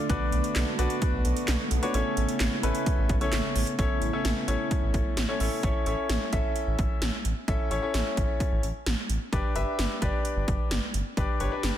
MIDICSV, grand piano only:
0, 0, Header, 1, 2, 480
1, 0, Start_track
1, 0, Tempo, 461538
1, 99, Time_signature, 4, 2, 24, 8
1, 12248, End_track
2, 0, Start_track
2, 0, Title_t, "Grand piano"
2, 0, Program_c, 0, 0
2, 99, Note_on_c, 0, 62, 91
2, 99, Note_on_c, 0, 66, 81
2, 99, Note_on_c, 0, 71, 85
2, 99, Note_on_c, 0, 74, 97
2, 732, Note_off_c, 0, 62, 0
2, 732, Note_off_c, 0, 66, 0
2, 732, Note_off_c, 0, 71, 0
2, 732, Note_off_c, 0, 74, 0
2, 819, Note_on_c, 0, 62, 88
2, 819, Note_on_c, 0, 71, 84
2, 820, Note_on_c, 0, 66, 84
2, 820, Note_on_c, 0, 74, 102
2, 1663, Note_off_c, 0, 62, 0
2, 1663, Note_off_c, 0, 66, 0
2, 1663, Note_off_c, 0, 71, 0
2, 1663, Note_off_c, 0, 74, 0
2, 1900, Note_on_c, 0, 62, 86
2, 1900, Note_on_c, 0, 66, 80
2, 1900, Note_on_c, 0, 71, 78
2, 1900, Note_on_c, 0, 73, 99
2, 2003, Note_off_c, 0, 73, 0
2, 2005, Note_off_c, 0, 62, 0
2, 2005, Note_off_c, 0, 66, 0
2, 2005, Note_off_c, 0, 71, 0
2, 2019, Note_on_c, 0, 61, 90
2, 2019, Note_on_c, 0, 64, 82
2, 2019, Note_on_c, 0, 69, 84
2, 2019, Note_on_c, 0, 73, 97
2, 2652, Note_off_c, 0, 61, 0
2, 2652, Note_off_c, 0, 64, 0
2, 2652, Note_off_c, 0, 69, 0
2, 2652, Note_off_c, 0, 73, 0
2, 2738, Note_on_c, 0, 61, 93
2, 2738, Note_on_c, 0, 64, 82
2, 2739, Note_on_c, 0, 69, 81
2, 2739, Note_on_c, 0, 71, 100
2, 3266, Note_off_c, 0, 61, 0
2, 3266, Note_off_c, 0, 64, 0
2, 3266, Note_off_c, 0, 69, 0
2, 3266, Note_off_c, 0, 71, 0
2, 3339, Note_on_c, 0, 61, 85
2, 3339, Note_on_c, 0, 64, 79
2, 3339, Note_on_c, 0, 69, 78
2, 3339, Note_on_c, 0, 73, 97
2, 3867, Note_off_c, 0, 61, 0
2, 3867, Note_off_c, 0, 64, 0
2, 3867, Note_off_c, 0, 69, 0
2, 3867, Note_off_c, 0, 73, 0
2, 3938, Note_on_c, 0, 69, 77
2, 3939, Note_on_c, 0, 61, 85
2, 3939, Note_on_c, 0, 64, 80
2, 3939, Note_on_c, 0, 73, 95
2, 4255, Note_off_c, 0, 61, 0
2, 4255, Note_off_c, 0, 64, 0
2, 4255, Note_off_c, 0, 69, 0
2, 4255, Note_off_c, 0, 73, 0
2, 4298, Note_on_c, 0, 61, 83
2, 4298, Note_on_c, 0, 64, 78
2, 4298, Note_on_c, 0, 69, 77
2, 4298, Note_on_c, 0, 73, 94
2, 4615, Note_off_c, 0, 61, 0
2, 4615, Note_off_c, 0, 64, 0
2, 4615, Note_off_c, 0, 69, 0
2, 4615, Note_off_c, 0, 73, 0
2, 4658, Note_on_c, 0, 61, 87
2, 4658, Note_on_c, 0, 64, 80
2, 4658, Note_on_c, 0, 69, 76
2, 4658, Note_on_c, 0, 73, 95
2, 5397, Note_off_c, 0, 61, 0
2, 5397, Note_off_c, 0, 64, 0
2, 5397, Note_off_c, 0, 69, 0
2, 5397, Note_off_c, 0, 73, 0
2, 5498, Note_on_c, 0, 61, 82
2, 5498, Note_on_c, 0, 64, 72
2, 5498, Note_on_c, 0, 69, 72
2, 5498, Note_on_c, 0, 73, 91
2, 5604, Note_off_c, 0, 61, 0
2, 5604, Note_off_c, 0, 64, 0
2, 5604, Note_off_c, 0, 69, 0
2, 5604, Note_off_c, 0, 73, 0
2, 5619, Note_on_c, 0, 61, 80
2, 5619, Note_on_c, 0, 64, 77
2, 5620, Note_on_c, 0, 69, 77
2, 5620, Note_on_c, 0, 73, 91
2, 5830, Note_off_c, 0, 61, 0
2, 5830, Note_off_c, 0, 64, 0
2, 5830, Note_off_c, 0, 69, 0
2, 5830, Note_off_c, 0, 73, 0
2, 5859, Note_on_c, 0, 61, 84
2, 5859, Note_on_c, 0, 64, 79
2, 5859, Note_on_c, 0, 69, 79
2, 5859, Note_on_c, 0, 73, 89
2, 6070, Note_off_c, 0, 61, 0
2, 6070, Note_off_c, 0, 64, 0
2, 6070, Note_off_c, 0, 69, 0
2, 6070, Note_off_c, 0, 73, 0
2, 6100, Note_on_c, 0, 61, 82
2, 6100, Note_on_c, 0, 64, 78
2, 6100, Note_on_c, 0, 69, 77
2, 6100, Note_on_c, 0, 73, 90
2, 6521, Note_off_c, 0, 61, 0
2, 6521, Note_off_c, 0, 69, 0
2, 6521, Note_off_c, 0, 73, 0
2, 6522, Note_off_c, 0, 64, 0
2, 6579, Note_on_c, 0, 64, 77
2, 6579, Note_on_c, 0, 69, 76
2, 6580, Note_on_c, 0, 61, 84
2, 6580, Note_on_c, 0, 76, 94
2, 7423, Note_off_c, 0, 61, 0
2, 7423, Note_off_c, 0, 64, 0
2, 7423, Note_off_c, 0, 69, 0
2, 7423, Note_off_c, 0, 76, 0
2, 7779, Note_on_c, 0, 61, 82
2, 7779, Note_on_c, 0, 64, 78
2, 7779, Note_on_c, 0, 69, 78
2, 7779, Note_on_c, 0, 76, 93
2, 7990, Note_off_c, 0, 61, 0
2, 7990, Note_off_c, 0, 64, 0
2, 7990, Note_off_c, 0, 69, 0
2, 7990, Note_off_c, 0, 76, 0
2, 8018, Note_on_c, 0, 69, 77
2, 8018, Note_on_c, 0, 73, 98
2, 8019, Note_on_c, 0, 61, 86
2, 8019, Note_on_c, 0, 64, 78
2, 8123, Note_off_c, 0, 61, 0
2, 8123, Note_off_c, 0, 64, 0
2, 8123, Note_off_c, 0, 69, 0
2, 8123, Note_off_c, 0, 73, 0
2, 8139, Note_on_c, 0, 61, 81
2, 8139, Note_on_c, 0, 64, 76
2, 8139, Note_on_c, 0, 69, 74
2, 8139, Note_on_c, 0, 73, 92
2, 8983, Note_off_c, 0, 61, 0
2, 8983, Note_off_c, 0, 64, 0
2, 8983, Note_off_c, 0, 69, 0
2, 8983, Note_off_c, 0, 73, 0
2, 9699, Note_on_c, 0, 62, 84
2, 9699, Note_on_c, 0, 67, 80
2, 9699, Note_on_c, 0, 71, 78
2, 9699, Note_on_c, 0, 74, 93
2, 9910, Note_off_c, 0, 62, 0
2, 9910, Note_off_c, 0, 67, 0
2, 9910, Note_off_c, 0, 71, 0
2, 9910, Note_off_c, 0, 74, 0
2, 9939, Note_on_c, 0, 62, 87
2, 9939, Note_on_c, 0, 67, 78
2, 9939, Note_on_c, 0, 71, 77
2, 9939, Note_on_c, 0, 76, 94
2, 10361, Note_off_c, 0, 62, 0
2, 10361, Note_off_c, 0, 67, 0
2, 10361, Note_off_c, 0, 71, 0
2, 10361, Note_off_c, 0, 76, 0
2, 10418, Note_on_c, 0, 71, 77
2, 10418, Note_on_c, 0, 74, 96
2, 10419, Note_on_c, 0, 62, 87
2, 10419, Note_on_c, 0, 67, 81
2, 11263, Note_off_c, 0, 62, 0
2, 11263, Note_off_c, 0, 67, 0
2, 11263, Note_off_c, 0, 71, 0
2, 11263, Note_off_c, 0, 74, 0
2, 11618, Note_on_c, 0, 62, 86
2, 11619, Note_on_c, 0, 67, 77
2, 11619, Note_on_c, 0, 71, 77
2, 11619, Note_on_c, 0, 74, 93
2, 11830, Note_off_c, 0, 62, 0
2, 11830, Note_off_c, 0, 67, 0
2, 11830, Note_off_c, 0, 71, 0
2, 11830, Note_off_c, 0, 74, 0
2, 11859, Note_on_c, 0, 62, 86
2, 11859, Note_on_c, 0, 67, 81
2, 11859, Note_on_c, 0, 71, 77
2, 11859, Note_on_c, 0, 73, 95
2, 11963, Note_off_c, 0, 62, 0
2, 11963, Note_off_c, 0, 67, 0
2, 11963, Note_off_c, 0, 71, 0
2, 11964, Note_off_c, 0, 73, 0
2, 11979, Note_on_c, 0, 62, 83
2, 11979, Note_on_c, 0, 67, 74
2, 11979, Note_on_c, 0, 71, 78
2, 11979, Note_on_c, 0, 74, 88
2, 12248, Note_off_c, 0, 62, 0
2, 12248, Note_off_c, 0, 67, 0
2, 12248, Note_off_c, 0, 71, 0
2, 12248, Note_off_c, 0, 74, 0
2, 12248, End_track
0, 0, End_of_file